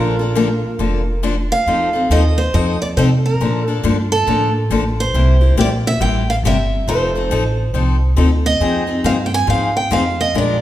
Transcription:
Already playing: upright bass A#1, steel-string acoustic guitar D3 F3 A#3 D4 A4 A#4, flugelhorn F4
0.19 steel-string acoustic guitar A#3 D4 A4
0.35 steel-string acoustic guitar D3 F3 A#3 D4 A4
0.79 upright bass F1, steel-string acoustic guitar D3 F3 A#3 D4 A4
1.23 steel-string acoustic guitar D3 F3 A#3 D4 A4
1.52 steel-string acoustic guitar F5
1.66 upright bass F2, steel-string acoustic guitar F3 C4 D#4 A4
1.93 steel-string acoustic guitar C4 D#4 A4
2.10 upright bass D#2, steel-string acoustic guitar F3 C4 D#4 A4 D#5
2.38 steel-string acoustic guitar C5
2.54 upright bass F2, steel-string acoustic guitar F3 C4 D#4 A4 D#5
2.82 steel-string acoustic guitar D5
2.97 upright bass C3, steel-string acoustic guitar F3 C4 D#4 A4 C5
3.26 steel-string acoustic guitar A#4
3.40 upright bass A#2, steel-string acoustic guitar D3 F3 A#3 D4 A4
3.65 steel-string acoustic guitar D4 A4
3.69 steel-string acoustic guitar A#3
3.83 upright bass G2, steel-string acoustic guitar D3 F3 A#3 D4 A4
4.12 steel-string acoustic guitar A4
4.27 upright bass A2, steel-string acoustic guitar D3 F3 A#3 D4 A4
4.70 upright bass A1, steel-string acoustic guitar D3 F3 A#3 D4 A4
5.00 steel-string acoustic guitar C5
5.14 upright bass C2, steel-string acoustic guitar C3 G3 A#3 E4 G4
5.41 steel-string acoustic guitar A#3 E4 G4
5.57 upright bass A#1, steel-string acoustic guitar C3 G3 A#3 E4 G4 D5
5.87 steel-string acoustic guitar E5
6.00 upright bass A1, steel-string acoustic guitar C3 G3 A#3 E4 G4 G5
6.30 steel-string acoustic guitar F5
6.43 upright bass G1, steel-string acoustic guitar C3 G3 A#3 E4 G4 E5
6.87 upright bass F1, steel-string acoustic guitar F3 C4 D#4 A4 C5
7.15 steel-string acoustic guitar C4 D#4 A4
7.30 upright bass A1, steel-string acoustic guitar F3 C4 D#4 A4
7.73 upright bass C2, steel-string acoustic guitar F3 C4 D#4 A4
8.16 upright bass D2, steel-string acoustic guitar F3 C4 D#4 A4
8.46 steel-string acoustic guitar D#5
8.60 upright bass F2, steel-string acoustic guitar F3 C4 D#4 G#4
8.87 steel-string acoustic guitar C4 D#4 G#4
9.04 upright bass G2, steel-string acoustic guitar F3 C4 D#4 G#4 F5
9.26 steel-string acoustic guitar G5
9.34 steel-string acoustic guitar G#5
9.47 upright bass G#2, steel-string acoustic guitar F3 C4 D#4 G#4 F5
9.77 steel-string acoustic guitar G5
9.91 upright bass F2, steel-string acoustic guitar F3 C4 D#4 G#4 F5
10.21 steel-string acoustic guitar D#5
10.34 upright bass A#1, steel-string acoustic guitar F3 G#3 D4 F4 A#4 D5

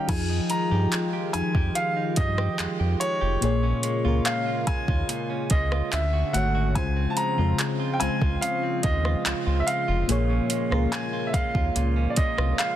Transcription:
Already playing: fm electric piano D#3 C#4 F#4 G4 D#5 F5 G5 A#5, clean electric guitar D#3 C#4 F4, grand piano G5
0.08 analog synth bass F2, analog synth pad D#3 F3 F4, fm electric piano F3 D#4 F4 G#4, grand piano G#5, kick, closed hi-hat, crash
0.30 clean electric guitar D#4
0.50 clean electric guitar G#3, grand piano A#5, closed hi-hat
0.70 analog synth bass G2, fm electric piano F3 D#4 G4, clean electric guitar G4
0.74 fm electric piano G#4
0.92 clean electric guitar G#3, clap, closed hi-hat
1.13 clean electric guitar G4
1.33 analog synth bass F2, fm electric piano F3 D#4 F4 G#4, clean electric guitar G#3, grand piano G#5, closed hi-hat
1.55 analog synth bass F2, clean electric guitar G4, kick
1.75 clean electric guitar F3, grand piano F5, closed hi-hat
1.97 clean electric guitar D#4
2.16 analog synth bass G2, grand piano D#5, kick, closed hi-hat
2.38 clean electric guitar G4, cross-stick
2.59 analog synth bass F2, clean electric guitar G#3, clap, closed hi-hat
2.80 analog synth bass F2, clean electric guitar G4
3.00 clean electric guitar G#3, grand piano C#5, closed hi-hat
3.21 analog synth bass F1, clean electric guitar G4
3.41 analog synth bass A#1, fm electric piano A#2 A#3 G#4 C#5, clean electric guitar A#2, analog synth pad C#3 A#3 F4, closed hi-hat
3.63 clean electric guitar C#4
3.83 clean electric guitar G#3, closed hi-hat
4.04 analog synth bass C#2, fm electric piano A#2 A#3 G#4, clean electric guitar F4
4.08 fm electric piano A#4
4.25 clean electric guitar G#3, grand piano F5, clap, closed hi-hat
4.46 clean electric guitar F4
4.67 analog synth bass D#2, clean electric guitar G#3, grand piano G#5, kick, closed hi-hat
4.88 analog synth bass D#2, clean electric guitar F4, kick
5.09 clean electric guitar A#2, closed hi-hat
5.30 clean electric guitar C#4
5.50 analog synth bass C#2, clean electric guitar G#3, grand piano D#5, kick, closed hi-hat
5.72 clean electric guitar F4, cross-stick
5.92 analog synth bass D2, analog synth pad D3 A3 C#4 F#4, clean electric guitar D3, grand piano E5, clap, closed hi-hat
6.13 clean electric guitar F#4
6.33 analog synth bass G#1, fm electric piano D3 A3 F#4 C#5, clean electric guitar A3, grand piano F#5, closed hi-hat
6.55 clean electric guitar F#4
6.74 analog synth bass C#2, fm electric piano C#3 G#3 F4, analog synth pad C#3 F3 C4 F4, grand piano G#5, kick, closed hi-hat
6.78 fm electric piano C5
6.96 clean electric guitar C4
7.10 grand piano A5
7.17 clean electric guitar G#3, grand piano A#5, closed hi-hat
7.37 analog synth bass F2, fm electric piano C#3 G#3 F4 C5, clean electric guitar F4
7.59 clean electric guitar G#3, clap, closed hi-hat
7.80 clean electric guitar F4
7.93 grand piano G5
7.99 analog synth bass C#2, fm electric piano C#3 G#3 F4, clean electric guitar G#3, grand piano G#5, closed hi-hat
8.03 fm electric piano C5
8.21 analog synth bass C#2, clean electric guitar F4, kick
8.41 clean electric guitar C#3, grand piano F5, closed hi-hat
8.63 clean electric guitar C4
8.83 analog synth bass D#2, clean electric guitar G#3, grand piano D#5, kick, closed hi-hat
9.05 clean electric guitar F4, cross-stick
9.26 analog synth bass C#2, clean electric guitar G#3, clap, closed hi-hat
9.46 analog synth bass C#2, clean electric guitar F4
9.60 grand piano E5
9.67 clean electric guitar G#3, grand piano F5, closed hi-hat
9.88 analog synth bass F1, clean electric guitar F4
10.08 analog synth bass A#1, fm electric piano A#2 A#3 G#4, clean electric guitar A#2, analog synth pad A#3, closed hi-hat
10.12 fm electric piano C#5
10.30 clean electric guitar C#4
10.50 clean electric guitar G#3, closed hi-hat
10.70 analog synth bass C#2, fm electric piano A#2 A#3 G#4 A#4, clean electric guitar F4, cross-stick
10.92 clean electric guitar G#3, grand piano G#5, clap, closed hi-hat
11.13 clean electric guitar F4
11.27 grand piano E5
11.33 analog synth bass D#2, clean electric guitar G#3, grand piano F5, kick, closed hi-hat
11.55 analog synth bass D#2, clean electric guitar F4, kick
11.75 analog synth bass C#2, clean electric guitar A#2, closed hi-hat
11.96 clean electric guitar C#4
12.10 grand piano D5
12.16 analog synth bass C2, clean electric guitar G#3, grand piano D#5, kick, closed hi-hat
12.38 analog synth bass C2, clean electric guitar F4, cross-stick
12.58 clean electric guitar G#3, grand piano F5, clap, closed hi-hat

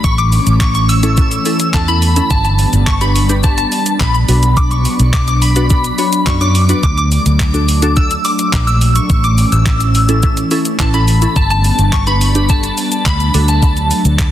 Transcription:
0.04 fingered electric bass A1, analog synth pad E3 A3 C#4, synth bell C#6, kick, shaker
0.18 synth bell D6, closed hi-hat, shaker
0.32 open hi-hat, shaker
0.47 fingered electric bass A1, closed hi-hat, shaker
0.61 synth bell C#6, kick, clap, shaker
0.75 synth bell C#6, closed hi-hat, shaker
0.89 synth bell E6, open hi-hat, shaker
1.03 synth pluck C#4 E4 A4, closed hi-hat, shaker
1.17 synth pluck C#4 E4 A4, kick, shaker
1.31 closed hi-hat, shaker
1.45 synth pluck C#4 E4 A4, open hi-hat, shaker
1.60 closed hi-hat, shaker
1.74 fingered electric bass E2, synth pluck C#4 E4 A4, synth bell A5, kick, clap, shaker
1.88 synth pluck C#4 E4 A4, synth bell B5, closed hi-hat, shaker
2.02 open hi-hat, shaker
2.16 synth pluck C#4 E4 A4, closed hi-hat, shaker
2.31 fingered electric bass G1, analog synth pad G3 B3 D4, synth bell A5, kick, shaker
2.45 synth bell A5, closed hi-hat, shaker
2.59 open hi-hat, shaker
2.73 fingered electric bass G1, closed hi-hat, shaker
2.87 synth bell C#6, kick, clap, shaker
3.01 synth pluck D4 G4 B4, synth bell B5, closed hi-hat, shaker
3.16 open hi-hat, shaker
3.29 synth pluck D4 G4 B4, closed hi-hat, shaker
3.43 synth pluck D4 G4 B4, synth bell A5, kick, shaker
3.58 synth bell A5, closed hi-hat, shaker
3.72 open hi-hat, shaker
3.86 closed hi-hat, shaker
4.00 fingered electric bass A#1, synth bell B5, kick, clap, shaker
4.14 synth bell B5, closed hi-hat, shaker
4.28 fingered electric bass B1, analog synth pad F#3 B3, synth pluck D4 F#4 B4, open hi-hat, shaker
4.43 closed hi-hat, shaker
4.57 synth bell D6, kick, shaker
4.71 synth bell C#6, closed hi-hat, shaker
4.85 open hi-hat, shaker
4.99 fingered electric bass B1, closed hi-hat, shaker
5.13 synth bell D6, kick, clap, shaker
5.28 synth bell D6, closed hi-hat, shaker
5.42 synth bell B5, open hi-hat, shaker
5.56 synth pluck D4 F#4 B4, closed hi-hat, shaker
5.70 synth pluck D4 F#4 B4, kick, shaker
5.84 closed hi-hat, shaker
5.98 synth pluck D4 F#4 C#5, open hi-hat, shaker
6.13 closed hi-hat, shaker
6.27 fingered electric bass F#2, synth pluck D4 F#4 D5, synth bell C#6, kick, clap, shaker
6.41 synth pluck D4 F#4 C#5, synth bell D6, closed hi-hat, shaker
6.55 open hi-hat, shaker
6.69 synth pluck D4 F#4 B4, closed hi-hat, shaker
6.83 fingered electric bass D2, analog synth pad A3, synth bell D6, kick, shaker
6.97 synth bell D6, closed hi-hat, shaker
7.12 open hi-hat, shaker
7.26 fingered electric bass D2, closed hi-hat, shaker
7.40 kick, clap, shaker
7.54 synth pluck D4 F#4 A4, closed hi-hat, shaker
7.68 open hi-hat, shaker
7.82 synth pluck D4 F#4 A4, closed hi-hat, shaker
7.96 synth pluck D4 F#4 A4, synth bell E6, kick, shaker
8.11 closed hi-hat, shaker
8.25 synth bell D6, open hi-hat, shaker
8.39 closed hi-hat, shaker
8.53 fingered electric bass A#1, kick, clap, shaker
8.67 synth bell E6, closed hi-hat, shaker
8.81 open hi-hat, shaker
8.96 synth bell C#6, closed hi-hat, shaker
9.10 fingered electric bass A1, analog synth pad E3 C#4, kick, shaker
9.24 synth bell D6, closed hi-hat, shaker
9.38 open hi-hat, shaker
9.52 fingered electric bass A1, synth bell E6, closed hi-hat, shaker
9.66 kick, clap, shaker
9.80 closed hi-hat, shaker
9.95 open hi-hat, shaker
10.09 synth pluck C#4 E4 A4, closed hi-hat, shaker
10.23 synth pluck C#4 E4 A4, kick, shaker
10.37 closed hi-hat, shaker
10.51 synth pluck C#4 E4 A4, open hi-hat, shaker
10.65 closed hi-hat, shaker
10.79 fingered electric bass A1, synth pluck C#4 E4 B4, synth bell A5, kick, clap, shaker
10.94 synth pluck C#4 E4 A4, synth bell B5, closed hi-hat, shaker
11.08 open hi-hat, shaker
11.22 synth pluck C#4 E4 A4, closed hi-hat, shaker
11.36 fingered electric bass G1, analog synth pad G3 B3 D4, synth bell A5, kick, shaker
11.50 synth bell A5, closed hi-hat, shaker
11.64 open hi-hat, shaker
11.79 fingered electric bass G1, closed hi-hat, shaker
11.93 synth bell C#6, kick, clap, shaker
12.07 synth pluck D4 G4 B4, synth bell B5, closed hi-hat, shaker
12.21 open hi-hat, shaker
12.35 synth pluck D4 G4 B4, closed hi-hat, shaker
12.49 synth pluck D4 G4 A4, synth bell A5, kick, shaker
12.63 closed hi-hat, shaker
12.77 open hi-hat, shaker
12.92 closed hi-hat, shaker
13.06 fingered electric bass D2, synth bell B5, kick, clap, shaker
13.20 closed hi-hat, shaker
13.34 fingered electric bass D2, analog synth pad F#3 A3, synth pluck D4 F#4 A4, open hi-hat, shaker
13.48 synth bell A5, closed hi-hat, shaker
13.63 kick, shaker
13.77 closed hi-hat, shaker
13.91 open hi-hat, shaker
14.05 fingered electric bass D2, closed hi-hat, shaker
14.19 kick, clap, shaker

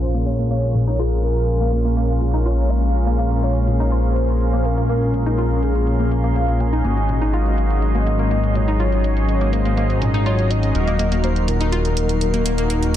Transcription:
Already playing: analog synth bass A#1, analog synth pad G#3 A#3 C#4, supersaw synth C#4 F4 G#4 A#4 F5, synth texture A#4 C6, impact
0.02 soft synth lead C5, closed hi-hat
0.14 synth arpeggio sound A#3, closed hi-hat
0.26 synth arpeggio sound A#3, soft synth lead C#5, closed hi-hat
0.39 synth arpeggio sound A#3, closed hi-hat
0.50 synth arpeggio sound A#3, soft synth lead C#5, closed hi-hat
0.63 closed hi-hat
0.75 synth arpeggio sound A#2, closed hi-hat
0.87 synth arpeggio sound D#4, closed hi-hat
0.99 synth arpeggio sound F4, soft synth lead G#4, closed hi-hat
1.12 closed hi-hat
1.24 soft synth lead A#4, closed hi-hat
1.36 closed hi-hat
1.48 closed hi-hat
1.61 synth arpeggio sound A#3, closed hi-hat
1.72 synth arpeggio sound A#3, closed hi-hat
1.85 synth arpeggio sound A#3, closed hi-hat
1.97 synth arpeggio sound A#3, closed hi-hat
2.09 closed hi-hat
2.21 synth arpeggio sound A#2, closed hi-hat
2.34 synth arpeggio sound D#4, closed hi-hat
2.46 synth arpeggio sound F4, soft synth lead C#5, closed hi-hat
2.58 closed hi-hat
2.70 soft synth lead F5, closed hi-hat
2.83 closed hi-hat
2.94 supersaw synth C#4 F4 G#4 A#4 F5, closed hi-hat
3.07 synth arpeggio sound A#3, closed hi-hat
3.19 synth arpeggio sound A#3, closed hi-hat
3.31 synth arpeggio sound A#3, closed hi-hat
3.43 synth arpeggio sound A#3, soft synth lead C#5, closed hi-hat
3.56 closed hi-hat
3.67 synth arpeggio sound A#2, closed hi-hat
3.80 synth arpeggio sound D#4, closed hi-hat
3.92 synth arpeggio sound F4, soft synth lead C5, closed hi-hat
4.04 closed hi-hat
4.16 closed hi-hat
4.29 closed hi-hat
4.41 closed hi-hat
4.53 synth arpeggio sound A#3, closed hi-hat
4.65 synth arpeggio sound A#3, soft synth lead A#4, closed hi-hat
4.78 synth arpeggio sound A#3, closed hi-hat
4.89 synth arpeggio sound A#3, soft synth lead A#4, closed hi-hat
5.02 closed hi-hat
5.14 synth arpeggio sound A#2, soft synth lead A#4, closed hi-hat
5.26 synth arpeggio sound D#4, closed hi-hat
5.38 synth arpeggio sound F4, closed hi-hat
5.51 closed hi-hat
5.63 soft synth lead G#4, closed hi-hat
5.75 closed hi-hat
5.87 closed hi-hat
6.00 synth arpeggio sound A#3, closed hi-hat
6.11 synth arpeggio sound A#3, closed hi-hat
6.24 synth arpeggio sound A#3, closed hi-hat
6.36 synth arpeggio sound A#3, soft synth lead F5, closed hi-hat
6.48 closed hi-hat
6.60 synth arpeggio sound A#2, soft synth lead G#5, closed hi-hat
6.73 synth arpeggio sound D#4, closed hi-hat
6.85 analog synth bass G#1, analog synth pad F#3 G#3, synth arpeggio sound A#3, supersaw synth C#4 D#4 F#4 G#4 D#5, closed hi-hat
6.97 closed hi-hat
7.09 synth arpeggio sound A#2, closed hi-hat
7.22 synth arpeggio sound D#4, closed hi-hat
7.33 synth arpeggio sound F4, soft synth lead F5, closed hi-hat
7.46 closed hi-hat
7.58 closed hi-hat
7.70 closed hi-hat
7.82 soft synth lead D#5, closed hi-hat
7.95 synth arpeggio sound A#3, closed hi-hat
8.07 synth arpeggio sound A#3, closed hi-hat
8.19 synth arpeggio sound A#3, closed hi-hat
8.31 synth arpeggio sound A#3, closed hi-hat
8.44 closed hi-hat
8.55 synth arpeggio sound A#2, soft synth lead C#5, closed hi-hat
8.68 synth arpeggio sound D#4, closed hi-hat
8.80 synth arpeggio sound F4, soft synth lead C#5, closed hi-hat
8.92 closed hi-hat
9.04 soft synth lead C#5, closed hi-hat
9.17 closed hi-hat
9.29 closed hi-hat
9.41 synth arpeggio sound A#3, closed hi-hat
9.53 synth arpeggio sound A#3, soft synth lead C5, closed hi-hat
9.65 synth arpeggio sound A#3, closed hi-hat
9.77 synth arpeggio sound A#3, closed hi-hat
9.90 closed hi-hat
10.02 synth arpeggio sound A#2, closed hi-hat
10.14 synth arpeggio sound D#4, closed hi-hat
10.26 synth arpeggio sound F4, soft synth lead C#5, closed hi-hat
10.39 closed hi-hat
10.50 soft synth lead D#5, closed hi-hat
10.63 closed hi-hat
10.75 analog synth bass D#1, analog synth pad A#3 D#4, supersaw synth D#4 F#4 A#4, closed hi-hat
10.87 synth arpeggio sound A#3, closed hi-hat
10.99 synth arpeggio sound A#3, closed hi-hat
11.12 synth arpeggio sound A#3, closed hi-hat
11.24 synth arpeggio sound A#3, soft synth lead C5, closed hi-hat
11.36 closed hi-hat
11.48 synth arpeggio sound A#2, soft synth lead A#4, closed hi-hat
11.61 synth arpeggio sound D#4, closed hi-hat
11.72 synth arpeggio sound F4, closed hi-hat
11.85 closed hi-hat
11.97 closed hi-hat
12.09 closed hi-hat
12.21 closed hi-hat
12.34 synth arpeggio sound A#3, closed hi-hat
12.46 synth arpeggio sound A#3, closed hi-hat
12.58 synth arpeggio sound A#3, closed hi-hat
12.70 synth arpeggio sound A#3, closed hi-hat
12.83 closed hi-hat

